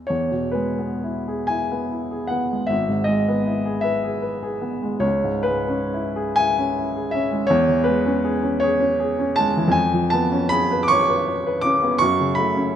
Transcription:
0.07 2.66 E2 soft
0.07 0.53 C#5 medium
0.31 0.69 B2 soft
0.52 0.93 G#3 soft
0.52 1.49 B4 medium
0.79 1.18 B3 soft
1.04 1.42 E4 soft
1.28 1.64 G#4 soft
1.47 1.84 E4 soft
1.47 2.30 G#5 medium
1.72 2.04 B3 soft
1.91 2.23 E4 soft
2.11 2.43 G#4 soft
2.27 2.62 B3 soft
2.27 2.68 F#5 medium
2.51 2.70 G#3 soft
2.67 5.00 G#1 soft
2.67 3.07 E5 medium
2.89 3.20 G#2 soft
3.04 3.38 G#3 soft
3.04 3.82 D#5 medium
3.28 3.58 B3 soft
3.46 3.77 E4 soft
3.66 3.96 G#4 soft
3.81 4.15 B4 soft
3.81 5.02 E5 medium
4.04 4.36 G#4 soft
4.22 4.55 B4 soft
4.43 4.75 G#4 soft
4.62 4.95 B3 soft
4.83 5.03 G#3 soft
5.00 7.45 C#2 soft
5.00 5.45 C#5 medium
5.24 5.60 G#2 soft
5.43 5.83 G#3 soft
5.43 6.36 B4 medium
5.69 6.07 C#4 soft
5.94 6.30 E4 soft
6.16 6.50 G#4 soft
6.36 6.70 E4 soft
6.36 7.13 G#5 loud
6.58 6.89 C#4 soft
6.78 7.07 E4 soft
6.97 7.26 G#4 soft
7.11 7.44 C#4 soft
7.11 7.49 E5 medium
7.31 7.50 G#3 soft
7.47 9.70 E2 medium
7.47 7.86 C#5 medium
7.69 7.99 E3 soft
7.84 8.17 G#3 soft
7.84 8.59 B4 medium
8.06 8.35 C#4 soft
8.25 8.54 G#4 medium
8.43 8.73 C#4 soft
8.60 8.92 G#4 medium
8.60 9.36 C#5 medium
8.80 9.11 C#4 soft
9.00 9.30 G#4 soft
9.19 9.49 C#4 medium
9.36 9.68 G#3 soft
9.36 9.74 A5 loud
9.57 9.75 E3 soft
9.67 11.94 F2 medium
9.72 10.11 G#5 medium
9.93 10.24 F3 soft
10.10 10.44 B3 soft
10.10 10.50 A5 medium
10.32 10.63 C#4 medium
10.49 10.82 G#4 medium
10.49 10.82 B5 loud
10.72 11.01 B4 medium
10.83 10.90 D6 medium
10.88 11.21 C#5 medium
10.88 11.64 C#6 loud
11.09 11.39 B4 soft
11.28 11.57 C#5 medium
11.47 11.76 B4 soft
11.61 11.94 C#4 soft
11.61 12.00 D6 loud
11.83 12.01 B3 soft
11.98 12.76 F#2 medium
11.98 12.37 C#6 loud
12.20 12.49 C#3 soft
12.35 12.68 A3 soft
12.35 12.76 B5 medium
12.57 12.76 C#4 soft

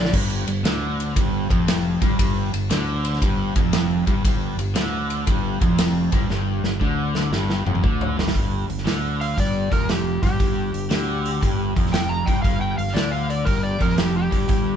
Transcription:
0.00 0.11 A#1 medium
0.00 0.12 A#2 medium
0.00 0.12 D3 medium
0.00 0.12 F3 medium
0.00 0.13 A#3 medium
0.00 0.13 D4 medium
0.00 0.13 D5 medium
0.05 snare medium
0.13 0.45 G1 loud
0.13 0.46 G2 loud
0.13 kick loud
0.13 crash loud
0.47 0.63 G1 medium
0.47 0.61 G2 medium
0.47 ride medium
0.64 1.12 D2 medium
0.64 1.15 D3 loud
0.64 snare loud
0.64 ride medium
1.00 ride medium
1.16 1.48 G1 medium
1.16 1.49 G2 loud
1.16 kick loud
1.16 ride medium
1.49 1.98 F1 loud
1.49 2.00 F2 loud
1.49 kick loud
1.49 ride medium
1.68 snare loud
1.68 ride loud
2.02 2.18 G1 medium
2.02 2.18 G2 loud
2.02 kick loud
2.02 ride medium
2.19 2.51 G1 medium
2.19 2.52 G2 medium
2.19 kick loud
2.19 ride loud
2.53 2.70 G1 medium
2.53 2.67 G2 medium
2.53 ride medium
2.70 3.18 D2 medium
2.70 3.21 D3 loud
2.70 snare loud
2.70 ride medium
3.05 ride medium
3.14 snare soft
3.21 3.54 G1 medium
3.21 3.55 G2 loud
3.21 kick loud
3.21 ride medium
3.56 4.04 F1 medium
3.56 4.06 F2 loud
3.56 kick loud
3.56 ride medium
3.73 snare loud
3.73 ride loud
4.07 4.23 G1 medium
4.07 4.23 G2 loud
4.07 kick loud
4.07 ride medium
4.24 4.56 G1 medium
4.24 4.57 G2 loud
4.24 kick loud
4.24 ride medium
4.57 4.74 G1 medium
4.57 4.72 G2 medium
4.57 ride medium
4.75 5.23 D2 medium
4.75 5.26 D3 loud
4.75 snare loud
4.75 ride medium
5.10 ride medium
5.26 5.59 G1 medium
5.26 5.60 G2 loud
5.26 kick medium
5.26 ride medium
5.61 6.09 F1 loud
5.61 6.11 F2 loud
5.61 kick loud
5.61 ride medium
5.78 snare loud
5.78 ride loud
6.12 6.28 G1 medium
6.12 6.28 G2 loud
6.12 kick loud
6.12 ride medium
6.29 6.61 G1 medium
6.29 6.63 G2 loud
6.29 snare medium
6.63 6.79 G1 medium
6.63 6.78 G2 medium
6.63 snare medium
6.81 7.29 D2 medium
6.81 7.31 D3 medium
6.81 kick medium
7.15 snare medium
7.31 7.63 G1 medium
7.31 7.65 G2 loud
7.31 snare medium
7.50 snare medium
7.66 7.82 F1 loud
7.66 7.83 F2 medium
7.66 mid tom medium
7.75 mid tom medium
7.83 8.15 D2 loud
7.83 8.16 D3 loud
7.83 kick loud
8.01 floor tom medium
8.17 8.33 G1 medium
8.17 8.33 G2 loud
8.17 snare medium
8.28 snare loud
8.34 8.67 G1 medium
8.34 8.67 G2 loud
8.34 kick loud
8.34 open hi-hat medium
8.68 8.85 G1 medium
8.68 8.82 G2 medium
8.68 open hi-hat medium
8.78 snare soft
8.86 9.33 D2 medium
8.86 9.36 D3 loud
8.86 snare loud
8.86 open hi-hat medium
9.21 9.37 F5 medium
9.21 open hi-hat medium
9.36 9.69 G1 loud
9.36 9.70 G2 loud
9.36 9.72 D5 medium
9.36 kick medium
9.36 open hi-hat medium
9.71 10.19 F1 medium
9.71 10.21 F2 loud
9.71 9.88 A#4 medium
9.71 kick medium
9.71 open hi-hat medium
9.89 10.22 G4 medium
9.89 snare loud
9.89 open hi-hat medium
10.22 10.38 G1 medium
10.22 10.38 G2 medium
10.22 11.73 G4 medium
10.22 kick medium
10.22 open hi-hat medium
10.39 10.71 G1 loud
10.39 10.71 G2 loud
10.39 kick loud
10.39 open hi-hat medium
10.73 10.89 G1 medium
10.73 10.87 G2 medium
10.73 open hi-hat medium
10.90 11.38 D2 medium
10.90 11.41 D3 loud
10.90 snare loud
10.90 open hi-hat medium
11.26 open hi-hat medium
11.41 11.74 G1 loud
11.41 11.75 G2 loud
11.41 kick medium
11.41 open hi-hat medium
11.76 12.24 F1 medium
11.76 12.26 F2 loud
11.76 kick medium
11.76 open hi-hat medium
11.86 snare soft
11.93 12.10 G5 medium
11.93 snare loud
11.93 open hi-hat medium
12.09 12.26 A#5 medium
12.26 12.43 G1 medium
12.26 12.43 G2 loud
12.26 12.42 G5 medium
12.26 kick loud
12.26 open hi-hat medium
12.42 12.76 G1 medium
12.42 12.77 G2 loud
12.42 12.60 F5 loud
12.42 kick loud
12.42 open hi-hat medium
12.61 12.77 G5 medium
12.78 12.94 G1 medium
12.78 12.92 G2 medium
12.78 12.95 F5 medium
12.78 open hi-hat medium
12.88 snare soft
12.94 13.43 D2 medium
12.94 13.46 D3 loud
12.94 13.11 D5 medium
12.94 snare loud
12.94 open hi-hat medium
13.11 13.29 F5 loud
13.30 13.46 D5 medium
13.30 open hi-hat medium
13.45 13.79 G1 medium
13.45 13.79 G2 loud
13.45 13.63 A#4 medium
13.45 kick medium
13.45 open hi-hat medium
13.63 13.80 D5 medium
13.79 14.29 F1 medium
13.79 14.30 F2 loud
13.79 13.98 A#4 medium
13.79 kick medium
13.79 open hi-hat medium
13.90 snare soft
13.98 14.15 G4 medium
13.98 snare loud
13.98 open hi-hat medium
14.17 14.76 G4 loud
14.31 14.48 G1 medium
14.31 14.47 G2 loud
14.31 kick medium
14.31 open hi-hat medium
14.48 14.76 G1 medium
14.48 14.76 G2 loud
14.48 kick loud
14.48 open hi-hat medium

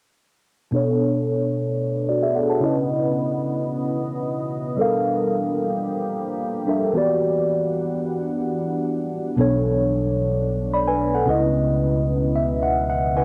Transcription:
0.71 2.57 B2 medium
0.71 4.74 B2 medium
0.71 2.60 A3 medium
0.71 2.58 B3 medium
0.71 4.74 B3 medium
0.71 2.60 D4 medium
0.71 2.59 D4 medium
0.71 2.06 A4 medium
0.76 2.07 C#5 medium
2.09 2.22 F#4 medium
2.09 2.22 D5 medium
2.23 2.35 G#4 medium
2.23 2.35 E5 medium
2.36 2.49 A4 medium
2.36 2.49 F#5 medium
2.50 2.75 C#5 medium
2.50 2.75 A5 medium
2.60 4.73 C#3 medium
2.60 4.76 E3 medium
2.60 4.74 C#4 medium
2.60 4.75 E4 medium
2.60 4.75 B4 medium
2.60 4.76 D#5 medium
2.65 4.76 D#5 medium
4.77 6.92 F3 medium
4.77 6.63 G3 medium
4.77 6.92 G3 medium
4.77 6.92 A#3 medium
4.77 6.63 D4 medium
4.77 6.92 G4 medium
4.77 6.64 A4 medium
4.77 6.65 A#4 medium
4.81 6.65 F5 medium
6.67 6.94 G3 medium
6.67 6.95 D4 soft
6.67 6.95 A4 soft
6.67 6.95 A#4 soft
6.67 6.95 E5 medium
6.93 9.06 E3 medium
6.93 9.35 E3 medium
6.93 9.35 G3 medium
6.93 9.07 B3 medium
6.93 9.35 D4 medium
6.93 9.07 F#4 medium
6.93 9.08 G4 medium
6.93 9.35 F#5 medium
6.98 9.08 D5 medium
9.36 11.23 B1 medium
9.36 11.22 B2 medium
9.36 13.25 B2 medium
9.36 11.25 A3 medium
9.36 11.23 B3 medium
9.36 13.25 B3 medium
9.36 11.25 D4 medium
9.36 11.24 D4 medium
9.36 10.71 A4 medium
9.41 10.72 C#5 medium
10.74 10.87 D5 medium
10.74 10.87 B5 medium
10.87 11.13 B4 medium
10.87 11.13 G#5 medium
11.14 11.40 A4 medium
11.14 11.40 F#5 medium
11.25 13.25 C#2 medium
11.25 13.11 C#3 medium
11.25 13.25 E3 medium
11.25 13.12 C#4 medium
11.25 13.13 E4 medium
11.25 13.13 B4 medium
11.25 13.25 D#5 medium
11.30 13.14 D#5 medium
12.36 12.61 E5 medium
12.63 12.88 F#5 medium
12.90 13.15 F#5 medium
13.16 13.25 C#3 medium
13.16 13.25 C#4 soft
13.16 13.25 E4 soft
13.16 13.25 B4 soft
13.16 13.25 F#5 medium
13.16 13.25 G#5 medium

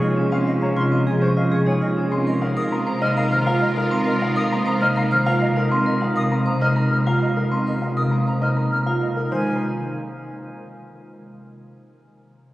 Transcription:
0.00 1.96 C#2 medium
0.00 0.75 C3 medium
0.00 1.51 C#3 medium
0.00 0.90 F3 medium
0.00 0.46 G#3 medium
0.00 1.21 A#3 medium
0.00 0.21 F4 medium
0.00 0.07 D#5 medium
0.17 0.36 C#4 medium
0.17 0.36 G#4 medium
0.32 0.51 C4 medium
0.32 0.38 F5 medium
0.32 0.51 F5 medium
0.47 2.14 G#3 medium
0.47 0.66 F4 medium
0.47 0.53 D#5 medium
0.62 0.81 C#4 medium
0.62 0.82 C#5 medium
0.62 0.68 A#5 medium
0.76 1.81 C3 medium
0.76 0.96 F4 medium
0.76 0.83 C6 medium
0.92 4.82 F3 medium
0.92 1.11 C4 medium
0.92 1.12 D#5 medium
1.07 1.26 G#4 medium
1.07 1.13 G#5 medium
1.22 2.71 A#3 medium
1.22 1.41 C#4 medium
1.22 1.41 C5 medium
1.22 1.28 C#6 medium
1.37 1.56 F4 medium
1.37 1.56 D#5 medium
1.37 1.43 F5 medium
1.52 2.14 C#3 medium
1.52 1.71 G#4 medium
1.52 1.58 C#6 medium
1.66 1.86 D#4 medium
1.66 1.86 C#5 medium
1.66 1.73 G#5 medium
1.81 2.14 C3 medium
1.81 2.01 F4 medium
1.81 1.88 D#5 medium
1.97 2.16 C#4 medium
1.97 2.17 G#4 medium
2.12 9.16 C#2 medium
2.12 2.31 C4 medium
2.12 5.53 F4 medium
2.12 5.53 A#4 medium
2.12 2.31 C6 medium
2.27 2.46 A#4 medium
2.27 2.33 D#5 medium
2.42 2.61 D#4 medium
2.42 2.61 F5 medium
2.57 3.61 C3 medium
2.57 2.76 A#4 medium
2.57 2.63 D#6 medium
2.72 4.50 A#3 medium
2.72 2.91 C4 medium
2.72 2.91 A#5 medium
2.87 3.06 C5 medium
2.87 2.93 A#5 medium
3.02 4.80 D#4 medium
3.02 3.21 D#4 medium
3.02 3.21 D#5 medium
3.02 3.08 F6 medium
3.17 3.36 A#4 medium
3.17 3.23 F5 medium
3.17 3.36 A#5 medium
3.32 5.11 D#3 medium
3.32 3.51 C5 medium
3.32 3.38 F6 medium
3.47 3.66 F4 medium
3.47 3.66 F5 medium
3.47 3.53 A#5 medium
3.62 4.35 C3 medium
3.62 3.68 D#5 medium
3.76 3.96 D#4 medium
3.76 3.96 A#4 medium
3.91 4.11 C4 medium
3.91 4.11 C6 medium
4.06 4.26 A#4 medium
4.06 4.12 D#5 medium
4.22 4.41 D#4 medium
4.22 4.41 F5 medium
4.36 5.40 C3 medium
4.36 4.56 A#4 medium
4.36 4.43 D#6 medium
4.51 6.31 A#3 medium
4.51 4.71 C4 medium
4.51 4.72 A#5 medium
4.66 4.86 C5 medium
4.66 4.73 A#5 medium
4.81 5.01 D#4 medium
4.81 6.60 D#4 medium
4.81 5.01 D#5 medium
4.81 4.88 F6 medium
4.96 5.16 A#4 medium
4.96 5.03 F5 medium
4.96 5.16 A#5 medium
5.11 9.02 D#3 medium
5.11 5.31 C5 medium
5.11 5.18 F6 medium
5.26 5.46 F4 medium
5.26 5.46 F5 medium
5.26 5.32 A#5 medium
5.41 6.15 C3 medium
5.41 5.48 D#5 medium
5.57 5.76 D#4 medium
5.57 5.76 A#4 medium
5.71 5.91 C4 medium
5.71 5.91 C6 medium
5.86 6.06 A#4 medium
5.86 5.93 D#5 medium
6.01 6.21 D#4 medium
6.01 6.21 F5 medium
6.16 7.21 C3 medium
6.16 6.36 A#4 medium
6.16 6.23 D#6 medium
6.31 8.10 A#3 medium
6.31 6.51 C4 medium
6.31 6.51 A#5 medium
6.46 6.66 C5 medium
6.46 6.53 A#5 medium
6.61 6.81 D#4 medium
6.61 8.40 D#4 medium
6.61 6.81 D#5 medium
6.61 6.67 F6 medium
6.76 6.96 A#4 medium
6.76 6.96 A#5 medium
6.92 6.98 F6 medium
7.07 7.26 F4 medium
7.07 7.26 F5 medium
7.07 7.13 A#5 medium
7.22 7.96 C3 medium
7.22 7.28 D#5 soft
7.37 7.56 D#4 medium
7.37 7.56 A#4 medium
7.52 7.71 C4 medium
7.52 7.71 C6 medium
7.67 7.86 A#4 medium
7.67 7.73 D#5 soft
7.82 8.01 D#4 soft
7.82 8.01 F5 medium
7.97 9.00 C3 medium
7.97 8.16 A#4 medium
7.97 8.03 D#6 medium
8.11 11.14 A#3 soft
8.11 8.31 C4 medium
8.11 8.31 A#5 soft
8.27 8.46 C5 soft
8.27 8.33 A#5 soft
8.41 11.14 D#4 medium
8.41 8.61 D#4 medium
8.41 8.61 D#5 medium
8.41 8.48 F6 medium
8.57 8.76 A#4 soft
8.57 8.76 A#5 soft
8.72 8.78 F6 soft
8.86 9.06 F4 medium
8.86 9.06 F5 medium
8.86 8.93 A#5 medium
9.01 9.34 C3 soft
9.01 9.08 D#5 soft
9.17 9.31 D#4 soft
9.17 9.36 A#4 soft
9.31 9.60 C#2 medium
9.31 9.60 D#3 medium
9.31 9.60 D#4 medium
9.31 9.60 C5 medium
9.31 9.60 G#5 medium

